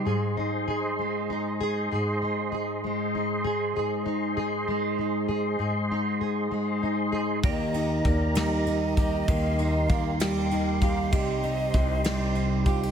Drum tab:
RD |------|------|------|------|
SD |------|------|------|------|
BD |------|------|------|------|

RD |xxxxxx|xxxxxx|xxxxxx|
SD |---o--|---o--|---o--|
BD |o-o--o|o-o--o|o-o--o|